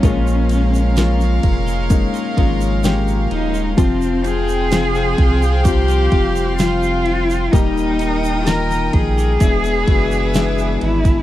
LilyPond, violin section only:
\new Staff \with { instrumentName = "Violin section" } { \time 4/4 \key f \minor \tempo 4 = 64 <des' bes' f''>1 | <c' f'' g''>1 | <ees' bes' g''>2 <b gis' e''>2 | }